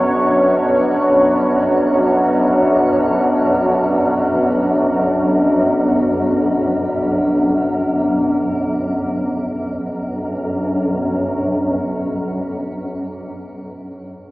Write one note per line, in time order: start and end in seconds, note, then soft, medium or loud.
0.00 8.81 B1 medium
0.00 8.81 F#2 medium
0.00 8.82 B3 medium
0.00 8.84 D4 medium
0.00 8.84 F#4 medium
0.00 8.84 C#5 medium
8.82 13.07 B1 medium
8.82 13.07 F#2 medium
8.82 13.08 B3 medium
9.00 13.25 D4 medium
9.16 13.41 F#4 medium
9.35 13.60 C#5 medium